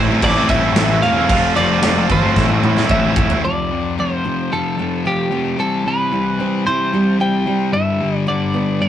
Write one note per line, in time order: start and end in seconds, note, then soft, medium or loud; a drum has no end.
0.00 0.17 A1 medium
0.00 0.23 A2 loud
0.00 0.36 E3 medium
0.00 0.11 A3 medium
0.00 0.11 C4 loud
0.08 0.37 A3 medium
0.08 0.36 C4 medium
0.08 0.33 E4 medium
0.22 0.44 A1 loud
0.22 0.50 D5 loud
0.22 kick medium
0.22 crash medium
0.34 0.75 A3 medium
0.34 0.76 C4 medium
0.34 0.76 E4 medium
0.49 0.71 A1 medium
0.49 0.75 E3 medium
0.49 0.65 A3 medium
0.49 0.64 C4 medium
0.49 0.62 E4 medium
0.49 1.02 E5 loud
0.49 kick medium
0.49 crash medium
0.63 0.77 A3 medium
0.63 0.77 C4 medium
0.63 0.76 E4 medium
0.73 0.98 A1 medium
0.73 1.15 A2 loud
0.73 1.01 E3 loud
0.73 0.91 A3 loud
0.73 0.90 C4 loud
0.73 snare loud
0.73 crash medium
0.78 0.87 E4 loud
0.88 1.02 A3 medium
0.88 1.04 C4 medium
0.88 1.04 E4 medium
1.02 1.25 E1 loud
1.02 1.27 E3 medium
1.02 1.17 A3 medium
1.02 1.16 C4 medium
1.02 1.13 E4 loud
1.02 1.56 F5 loud
1.02 crash medium
1.14 1.29 A3 medium
1.14 1.30 C4 medium
1.14 1.27 E4 medium
1.28 1.51 F1 loud
1.28 1.55 F3 loud
1.28 1.56 A3 medium
1.28 1.57 C4 loud
1.28 1.58 F4 loud
1.28 kick loud
1.28 crash medium
1.56 1.78 F1 loud
1.56 1.79 F3 medium
1.56 1.81 A3 medium
1.56 1.83 C4 medium
1.56 1.83 F4 medium
1.56 2.06 D5 loud
1.56 crash medium
1.71 1.83 A3 medium
1.71 1.83 C4 medium
1.71 1.84 F4 medium
1.80 2.05 F1 loud
1.80 2.07 F3 medium
1.80 1.97 A3 loud
1.80 1.95 C4 loud
1.80 1.94 F4 loud
1.80 snare loud
1.80 crash medium
1.95 2.07 A3 medium
1.95 2.08 C4 medium
1.95 2.08 F4 medium
2.08 2.31 G1 medium
2.08 2.35 F3 medium
2.08 2.24 A3 medium
2.08 2.23 C4 medium
2.08 2.22 F4 medium
2.08 3.14 C5 medium
2.08 muted distorted electric guitar stroke soft
2.08 kick medium
2.08 crash medium
2.21 2.36 A3 medium
2.21 2.35 C4 medium
2.21 2.34 F4 medium
2.35 2.58 A1 loud
2.35 2.76 A2 medium
2.35 2.76 E3 loud
2.35 2.51 A3 loud
2.35 2.49 C4 loud
2.35 2.47 E4 loud
2.35 kick medium
2.35 snare medium
2.48 2.88 A3 medium
2.48 2.89 C4 medium
2.48 2.90 E4 medium
2.63 2.85 A2 medium
2.63 2.89 E3 medium
2.63 2.77 A3 medium
2.63 2.77 C4 medium
2.63 2.75 E4 medium
2.63 mid tom medium
2.76 2.90 A3 medium
2.76 2.90 C4 medium
2.76 2.91 E4 medium
2.76 snare medium
2.88 3.11 A1 medium
2.88 3.29 A2 loud
2.88 3.14 E3 loud
2.88 3.03 A3 loud
2.88 3.02 C4 loud
2.88 3.00 E4 loud
2.88 3.40 E5 loud
2.88 kick medium
3.02 3.14 A3 medium
3.02 3.16 C4 medium
3.02 3.17 E4 medium
3.15 3.38 E1 medium
3.15 3.41 E3 medium
3.15 3.31 A3 medium
3.15 3.30 C4 medium
3.15 3.28 E4 loud
3.15 kick loud
3.29 3.43 A3 medium
3.29 3.42 C4 medium
3.29 3.41 E4 medium
3.29 floor tom medium
3.44 3.70 F2 medium
3.44 3.71 C3 loud
3.44 3.97 F3 medium
3.44 3.71 F3 loud
3.44 3.94 D5 medium
3.71 3.97 F2 medium
3.71 3.98 C3 medium
3.71 3.98 F3 medium
3.98 4.23 F2 medium
3.98 4.24 C3 medium
3.98 5.32 F3 medium
3.98 4.25 F3 medium
3.98 4.54 C5 loud
4.24 4.50 F2 medium
4.24 4.50 C3 medium
4.24 4.51 F3 medium
4.24 5.04 C4 medium
4.51 4.75 F2 medium
4.51 4.76 C3 medium
4.51 4.77 F3 medium
4.51 5.59 F4 medium
4.51 5.06 A4 medium
4.76 5.03 F2 medium
4.76 5.03 C3 medium
4.76 5.04 F3 medium
4.76 5.31 A3 medium
5.04 5.28 F2 loud
5.04 5.29 C3 loud
5.04 5.30 F3 loud
5.04 5.59 C4 medium
5.04 5.59 G4 medium
5.29 5.56 F2 medium
5.29 5.56 C3 medium
5.29 5.56 F3 medium
5.29 5.59 A3 medium
5.57 5.83 C3 medium
5.57 6.12 E3 medium
5.57 5.85 G3 medium
5.57 5.84 C4 medium
5.57 5.87 A4 medium
5.84 6.11 C3 medium
5.84 6.12 G3 medium
5.84 6.12 C4 medium
5.84 6.66 B4 medium
6.12 6.38 C3 medium
6.12 7.47 E3 medium
6.12 6.39 G3 medium
6.12 6.40 C4 medium
6.39 6.64 C3 medium
6.39 6.65 G3 medium
6.39 7.19 C4 medium
6.39 6.66 C4 medium
6.65 6.91 C3 medium
6.65 6.92 G3 medium
6.65 6.92 C4 medium
6.65 7.74 E4 medium
6.65 7.16 C5 loud
6.92 7.18 C3 medium
6.92 7.19 G3 medium
6.92 7.46 G3 medium
6.92 7.19 C4 medium
7.19 7.44 C3 loud
7.19 7.45 G3 loud
7.19 7.46 C4 loud
7.19 7.74 C4 medium
7.19 7.73 G5 loud
7.46 7.71 C3 medium
7.46 7.72 G3 medium
7.46 7.74 G3 medium
7.46 7.72 C4 medium
7.72 7.99 G2 medium
7.72 8.89 G2 medium
7.72 8.00 D3 medium
7.72 8.00 G3 medium
7.72 8.17 E5 loud
8.00 8.26 G2 medium
8.00 8.27 D3 medium
8.00 8.28 G3 medium
8.17 8.28 D5 loud
8.27 8.53 G2 medium
8.27 8.89 D3 medium
8.27 8.54 D3 medium
8.27 8.54 G3 loud
8.27 8.83 D5 medium
8.54 8.80 G2 medium
8.54 8.80 D3 medium
8.54 8.81 G3 medium
8.54 8.89 B3 medium
8.81 8.89 G2 medium
8.81 8.89 D3 medium
8.81 8.89 G3 medium
8.81 8.89 D4 medium
8.81 8.89 B4 medium